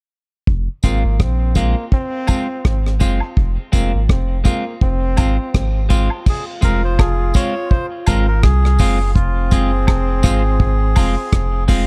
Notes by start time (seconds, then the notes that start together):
0.47 F1, kick
0.83 G#1 G#3 A#3 C4 F4, kick, closed hi-hat, tambourine
1.05 G#1
1.20 A#1 C4, kick, cross-stick
1.55 G#3 A#3 C4 F4, kick, closed hi-hat, tambourine
1.92 C4, kick
2.27 G#3 C4 F4, kick, closed hi-hat, tambourine, high woodblock
2.65 G#1, kick, cross-stick
2.86 cross-stick
3.00 F#1 G#3 C4 F4, kick, closed hi-hat, tambourine
3.20 high woodblock
3.37 F1, kick
3.72 F1 G#3 A#3 C4 F4, kick, closed hi-hat, tambourine
3.95 G#1
4.09 F1 C4, kick, cross-stick
4.44 G#3 A#3 C4 F4, kick, closed hi-hat, tambourine
4.81 F1 C4, kick
5.17 G#1 G#3 C4 F4, kick, closed hi-hat, tambourine, high woodblock
5.54 G#1, kick, cross-stick
5.89 G#3 C4 F4, kick, closed hi-hat, tambourine
6.10 high woodblock
6.26 F4 G#4, kick, crash
6.61 F1 G#3 C4 F4 A#4, kick, closed hi-hat, tambourine
6.85 C5
6.99 G#4, kick, cross-stick, high woodblock
7.34 G#3 C4 F4 C#5, kick, closed hi-hat, tambourine
7.70 C5, kick
8.06 G#1 G#3 C4 F4 A#4, kick, closed hi-hat, tambourine, high woodblock
8.28 A#4
8.43 C2 G#4, kick, cross-stick
8.65 cross-stick
8.79 F#1 G#3 C4 F4, kick, open hi-hat, tambourine
9.15 F1 C4 F4, kick, hi-hat pedal
9.51 F#1 G#3 C4 F4 G#4, kick, closed hi-hat, tambourine
9.87 F1 G#4, kick, cross-stick, high woodblock
10.23 G#1 G#3 C4 F4, kick, closed hi-hat, tambourine
10.60 G#1, kick
10.96 F1 G#3 C4 F4, kick, open hi-hat, tambourine, high woodblock
11.32 F1, kick, cross-stick, hi-hat pedal
11.68 G#3 C4 F4, kick, open hi-hat, tambourine